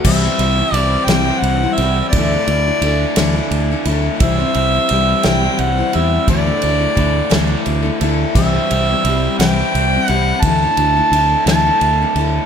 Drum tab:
CC |x-----|------|------|------|
RD |-xxxxx|xxxxxx|xxxxxx|xxxxxx|
SD |---o--|---o--|---o--|---o--|
BD |o-----|o-----|o-----|o-o---|

CC |x-----|------|
RD |-xxxxx|xxxxxx|
SD |---o--|---o--|
BD |o-----|o-----|